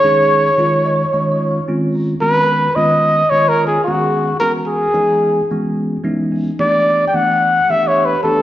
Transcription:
0.00 0.49 D#3 medium
0.00 0.48 G#3 medium
0.00 0.49 C#4 medium
0.00 0.49 D#4 medium
0.00 1.67 C#5 loud
0.04 0.49 G#4 medium
0.58 1.03 D#3 medium
0.58 1.03 G#3 medium
0.58 1.03 C#4 medium
0.58 1.03 D#4 medium
0.58 1.03 F4 loud
0.86 0.94 D#5 medium
0.96 1.12 C#5 medium
1.13 1.58 D#3 medium
1.13 1.58 G#3 medium
1.13 1.58 C#4 medium
1.13 1.58 D#4 medium
1.13 1.58 F4 medium
1.13 1.30 D#5 medium
1.31 1.48 D#5 medium
1.51 1.67 F5 medium
1.68 2.13 D#3 medium
1.68 2.13 G#3 medium
1.68 2.13 C4 medium
1.68 2.13 C#4 medium
1.68 2.13 F4 medium
1.68 1.93 G#5 medium
1.95 2.21 A#5 medium
2.21 2.67 D#3 medium
2.21 2.67 G#3 medium
2.21 2.67 B3 medium
2.21 2.67 C#4 medium
2.21 2.67 F#4 medium
2.21 2.77 B4 loud
2.76 3.21 D#3 medium
2.76 3.21 G#3 medium
2.76 3.22 B3 medium
2.76 3.22 C#4 medium
2.76 3.22 F4 medium
2.76 3.31 D#5 medium
3.30 3.77 D#3 medium
3.30 3.76 G#3 medium
3.30 3.77 B3 medium
3.30 3.77 C#4 medium
3.30 3.77 F4 medium
3.30 3.50 C#5 loud
3.49 3.66 A#4 medium
3.67 3.83 G#4 medium
3.84 4.32 D#3 medium
3.84 4.32 G#3 medium
3.84 4.32 B3 medium
3.84 4.32 C#4 medium
3.84 4.36 F#4 medium
3.84 4.32 G#4 medium
4.40 4.86 E3 medium
4.40 4.86 G#3 medium
4.40 4.86 B3 medium
4.40 4.86 C#4 medium
4.40 4.86 F#4 medium
4.40 4.53 A#4 medium
4.67 5.46 G#4 medium
4.94 5.40 E3 medium
4.94 5.40 G#3 medium
4.94 5.40 B3 medium
4.94 5.40 C#4 medium
4.94 5.40 D#4 medium
5.51 5.96 E3 medium
5.51 5.96 G#3 medium
5.51 5.96 B3 medium
5.51 5.96 C#4 medium
5.51 5.96 F#4 medium
6.04 6.50 E3 medium
6.04 6.50 G#3 medium
6.04 6.49 B3 medium
6.04 6.50 C#4 medium
6.04 6.50 D#4 medium
6.04 6.30 E5 medium
6.32 6.58 G#5 medium
6.59 7.04 E3 medium
6.59 7.04 A3 medium
6.59 7.04 B3 medium
6.59 7.05 D4 medium
6.59 7.05 G4 medium
6.59 7.05 D5 loud
7.08 7.17 G5 medium
7.13 7.59 E3 medium
7.13 7.59 A3 medium
7.13 7.59 B3 medium
7.13 7.59 D4 medium
7.13 7.59 G4 medium
7.13 7.72 F#5 medium
7.69 8.14 E3 medium
7.69 8.14 A3 medium
7.69 8.14 B3 medium
7.69 8.14 D4 medium
7.69 8.15 G4 medium
7.69 7.89 E5 medium
7.88 8.07 C#5 medium
8.06 8.23 B4 medium
8.23 8.42 E3 medium
8.23 8.42 A3 medium
8.23 8.42 B3 medium
8.23 8.42 D4 medium
8.23 8.42 G4 medium
8.23 8.42 A4 medium

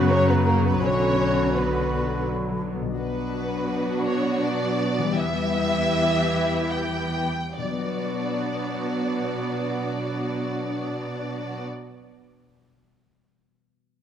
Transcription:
0.00 0.79 F#2 medium
0.00 0.84 F#2 medium
0.00 0.57 C#3 soft
0.00 0.78 C#3 medium
0.00 2.62 F#3 medium
0.00 2.74 F#3 medium
0.00 0.10 B3 medium
0.00 0.78 C#4 medium
0.00 0.51 F#4 soft
0.00 0.81 F#4 soft
0.00 1.53 F#4 soft
0.00 0.11 B5 soft
0.09 0.85 C#4 soft
0.09 0.28 C#4 medium
0.09 0.29 C#4 soft
0.09 0.28 C#5 medium
0.09 0.81 A#5 soft
0.28 0.45 B3 soft
0.28 0.47 B3 soft
0.28 0.46 B4 medium
0.34 2.50 F#3 soft
0.45 0.63 A#3 soft
0.45 0.64 A#4 soft
0.58 0.85 C#3 soft
0.64 0.81 B3 soft
0.64 0.83 B3 soft
0.64 0.82 B4 medium
0.81 2.75 B1 soft
0.81 2.80 B2 soft
0.81 2.61 D3 medium
0.81 2.74 D3 soft
0.81 1.54 C#4 medium
0.81 2.61 F#4 soft
0.81 2.59 F#4 soft
0.81 1.55 C#5 medium
0.81 2.62 B5 soft
1.07 2.73 B3 soft
1.31 1.77 D4 soft
1.54 2.26 B3 soft
1.54 2.28 B3 soft
1.54 2.01 F#4 soft
1.54 2.27 B4 soft
1.78 2.25 D4 soft
2.02 2.93 F#4 soft
2.27 2.89 D4 soft
2.51 2.84 F#3 soft
2.74 5.06 B3 soft
2.81 5.10 B2 soft
2.85 5.12 F#3 soft
2.90 5.14 D4 soft
2.94 5.16 F#4 soft
2.98 5.12 B2 soft
2.98 5.12 F#3 soft
2.98 7.28 B3 soft
2.98 5.12 D4 soft
2.98 5.12 F#4 medium
2.98 4.02 B4 medium
4.06 4.42 C#5 medium
4.42 5.15 D5 medium
4.98 7.51 E3 soft
5.03 7.54 G3 soft
5.07 7.70 B3 soft
5.12 7.58 E4 soft
5.12 7.28 E4 medium
5.12 7.28 G4 medium
5.12 6.71 E5 medium
5.17 7.29 E2 soft
5.17 7.29 E3 medium
6.72 7.57 G5 medium
7.55 11.64 B2 soft
7.55 11.64 F#3 soft
7.55 11.63 B3 soft
7.55 11.62 D4 soft
7.55 11.61 F#4 soft
7.55 11.64 D5 soft
7.64 11.71 F#3 soft
7.71 11.77 B3 soft
7.78 11.85 F#4 soft
7.85 11.92 B4 soft

